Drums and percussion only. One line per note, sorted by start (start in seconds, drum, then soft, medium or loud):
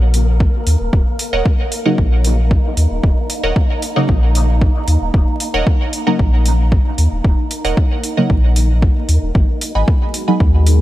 0.14 open hi-hat medium
0.40 kick loud
0.67 open hi-hat medium
0.93 kick loud
1.19 open hi-hat medium
1.46 kick loud
1.72 open hi-hat medium
1.98 kick loud
2.24 open hi-hat medium
2.51 kick loud
2.77 open hi-hat medium
3.03 kick loud
3.30 open hi-hat medium
3.56 kick loud
3.82 open hi-hat medium
4.09 kick loud
4.35 open hi-hat medium
4.61 kick loud
4.88 open hi-hat medium
5.14 kick loud
5.40 open hi-hat medium
5.67 kick loud
5.93 open hi-hat medium
6.19 kick loud
6.45 open hi-hat medium
6.72 kick loud
6.98 open hi-hat medium
7.24 kick loud
7.51 open hi-hat medium
7.65 open hi-hat soft
7.77 kick loud
8.03 open hi-hat medium
8.30 kick loud
8.56 open hi-hat medium
8.82 kick loud
9.09 open hi-hat medium
9.35 kick loud
9.61 open hi-hat medium
9.88 kick loud
10.14 open hi-hat medium
10.40 kick loud
10.67 open hi-hat medium